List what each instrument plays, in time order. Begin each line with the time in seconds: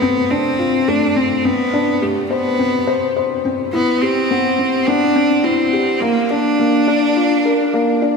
Already playing: felt piano A3 C4, cello B3
0.02 felt piano C4
0.31 cello C4, felt piano D4
0.59 felt piano F4
0.88 felt piano A3, cello D4
1.16 felt piano C4, cello C4
1.45 cello B3, felt piano C4
1.73 felt piano D4
2.02 cello A3, felt piano G4
2.30 cello B3, felt piano C5
2.59 felt piano C4
2.87 felt piano C5
3.17 felt piano C5
3.45 felt piano C4
3.73 cello B3, felt piano E4
4.02 cello C4, felt piano G4
4.31 felt piano B3
4.59 felt piano C4
4.87 felt piano B3, cello D4
5.16 felt piano C4
5.44 cello C4, felt piano E4
5.73 felt piano G4
6.01 cello A#3, felt piano A#3
6.30 cello D4, felt piano D4
6.59 felt piano A#3
6.88 felt piano D4
7.16 felt piano F4
7.45 felt piano A#4
7.74 felt piano A#3
8.02 felt piano D4